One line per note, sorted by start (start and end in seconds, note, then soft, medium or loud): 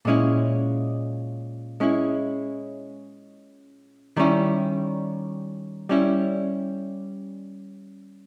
0.05 4.17 A#2 soft
0.05 1.79 G#3 soft
0.05 1.80 C#4 soft
0.10 1.82 E4 soft
1.80 4.17 G#3 soft
1.80 4.19 C#4 soft
1.80 4.19 E4 soft
4.17 8.27 D#3 soft
4.17 5.88 G3 soft
4.17 5.90 C#4 soft
4.17 5.91 E4 soft
5.89 8.27 G3 soft
5.89 8.27 C#4 soft
5.89 8.27 E4 soft